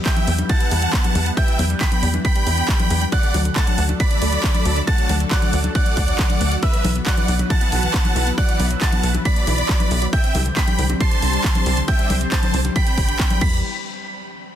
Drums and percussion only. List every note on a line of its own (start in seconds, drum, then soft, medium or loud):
0.06 kick loud
0.06 clap loud
0.06 closed hi-hat medium
0.17 closed hi-hat medium
0.17 high conga medium
0.27 open hi-hat loud
0.39 closed hi-hat medium
0.39 high conga medium
0.49 kick loud
0.49 closed hi-hat medium
0.60 closed hi-hat medium
0.71 open hi-hat loud
0.82 closed hi-hat medium
0.93 kick loud
0.93 clap loud
0.93 closed hi-hat medium
1.04 closed hi-hat medium
1.04 high conga medium
1.15 open hi-hat loud
1.26 closed hi-hat medium
1.37 kick loud
1.37 closed hi-hat medium
1.48 closed hi-hat medium
1.59 open hi-hat loud
1.59 high conga medium
1.70 closed hi-hat medium
1.81 kick loud
1.81 clap loud
1.81 closed hi-hat medium
1.92 closed hi-hat medium
1.92 high conga medium
2.03 open hi-hat loud
2.14 closed hi-hat medium
2.14 high conga medium
2.25 kick loud
2.25 closed hi-hat medium
2.36 closed hi-hat medium
2.47 open hi-hat loud
2.58 closed hi-hat medium
2.69 kick loud
2.69 clap loud
2.69 closed hi-hat medium
2.80 closed hi-hat medium
2.80 high conga medium
2.90 open hi-hat loud
3.01 closed hi-hat medium
3.12 kick loud
3.12 closed hi-hat medium
3.23 closed hi-hat medium
3.34 open hi-hat loud
3.34 high conga medium
3.45 closed hi-hat medium
3.56 kick loud
3.56 clap loud
3.56 closed hi-hat medium
3.67 closed hi-hat medium
3.67 high conga medium
3.78 open hi-hat loud
3.89 closed hi-hat medium
3.89 high conga medium
4.00 kick loud
4.00 closed hi-hat medium
4.11 closed hi-hat medium
4.22 open hi-hat loud
4.33 closed hi-hat medium
4.44 kick loud
4.44 clap loud
4.44 closed hi-hat medium
4.55 closed hi-hat medium
4.55 high conga medium
4.65 open hi-hat loud
4.76 closed hi-hat medium
4.87 kick loud
4.87 closed hi-hat medium
4.98 closed hi-hat medium
5.09 open hi-hat loud
5.09 high conga medium
5.20 closed hi-hat medium
5.31 kick loud
5.31 clap loud
5.31 closed hi-hat medium
5.42 closed hi-hat medium
5.42 high conga medium
5.53 open hi-hat loud
5.64 closed hi-hat medium
5.64 high conga medium
5.75 kick loud
5.75 closed hi-hat medium
5.86 closed hi-hat medium
5.97 kick medium
5.97 open hi-hat loud
6.08 closed hi-hat medium
6.19 kick loud
6.19 clap loud
6.19 closed hi-hat medium
6.30 closed hi-hat medium
6.30 high conga medium
6.41 open hi-hat loud
6.52 closed hi-hat medium
6.63 kick loud
6.63 closed hi-hat medium
6.74 closed hi-hat medium
6.85 open hi-hat loud
6.85 high conga medium
6.96 closed hi-hat medium
7.06 kick loud
7.06 clap loud
7.06 closed hi-hat medium
7.17 closed hi-hat medium
7.17 high conga medium
7.28 open hi-hat loud
7.39 closed hi-hat medium
7.39 high conga medium
7.50 kick loud
7.50 closed hi-hat medium
7.61 closed hi-hat medium
7.72 open hi-hat loud
7.83 closed hi-hat medium
7.94 kick loud
7.94 clap loud
7.94 closed hi-hat medium
8.05 closed hi-hat medium
8.05 high conga medium
8.16 open hi-hat loud
8.27 closed hi-hat medium
8.38 kick loud
8.38 closed hi-hat medium
8.49 closed hi-hat medium
8.60 open hi-hat loud
8.60 high conga medium
8.71 closed hi-hat medium
8.82 kick loud
8.82 clap loud
8.82 closed hi-hat medium
8.93 closed hi-hat medium
8.93 high conga medium
9.03 open hi-hat loud
9.14 closed hi-hat medium
9.14 high conga medium
9.25 kick loud
9.25 closed hi-hat medium
9.36 closed hi-hat medium
9.47 open hi-hat loud
9.58 closed hi-hat medium
9.69 kick loud
9.69 clap loud
9.69 closed hi-hat medium
9.80 closed hi-hat medium
9.80 high conga medium
9.91 open hi-hat loud
10.02 closed hi-hat medium
10.13 kick loud
10.13 closed hi-hat medium
10.24 closed hi-hat medium
10.35 open hi-hat loud
10.35 high conga medium
10.46 closed hi-hat medium
10.57 kick loud
10.57 clap loud
10.57 closed hi-hat medium
10.68 closed hi-hat medium
10.68 high conga medium
10.79 open hi-hat loud
10.90 closed hi-hat medium
10.90 high conga medium
11.00 kick loud
11.00 closed hi-hat medium
11.11 closed hi-hat medium
11.22 open hi-hat loud
11.33 closed hi-hat medium
11.44 kick loud
11.44 clap loud
11.44 closed hi-hat medium
11.55 closed hi-hat medium
11.55 high conga medium
11.66 open hi-hat loud
11.77 closed hi-hat medium
11.88 kick loud
11.88 closed hi-hat medium
11.99 closed hi-hat medium
12.10 open hi-hat loud
12.10 high conga medium
12.21 closed hi-hat medium
12.32 kick loud
12.32 clap loud
12.32 closed hi-hat medium
12.43 closed hi-hat medium
12.43 high conga medium
12.54 open hi-hat loud
12.65 closed hi-hat medium
12.65 high conga medium
12.76 kick loud
12.76 closed hi-hat medium
12.87 closed hi-hat medium
12.98 kick medium
12.98 open hi-hat loud
13.09 closed hi-hat medium
13.19 kick loud
13.19 clap loud
13.19 closed hi-hat medium
13.30 closed hi-hat medium
13.30 high conga medium
13.41 kick loud
13.41 crash medium